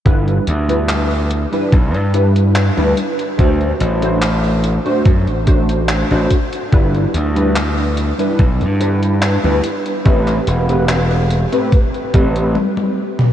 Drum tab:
HH |xxxxxxxxxxxxxxxx|xxxxxxxxxxxxxxxx|xxxxxxxxxxxxxxxx|xxxxxxxxxxxx----|
CP |----x-------x---|----x-------x---|----x-------x---|-x--x-----------|
T1 |----------------|----------------|----------------|------------oo--|
T2 |----------------|----------------|----------------|---------------o|
BD |o-------o-------|o-------o-o---o-|o-------o-------|o-------o-o-----|